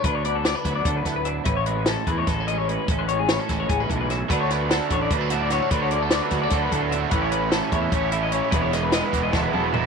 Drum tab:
HH |xxxxxxx|xxxxxxx|xxxxxxx|xxxxxxx|
SD |--o--o-|--o-o--|--oo--o|-oo---o|
T2 |-------|-------|-------|-------|
FT |-------|-------|-------|-------|
BD |o--ooo-|o--oo--|o--ooo-|o--oo--|

HH |xxxxxxx|xxxxxxx|xxxx---|
SD |--ooo--|--o----|-oooo--|
T2 |-------|-------|-----o-|
FT |-------|-------|------o|
BD |o--ooo-|o--oo--|o--oo--|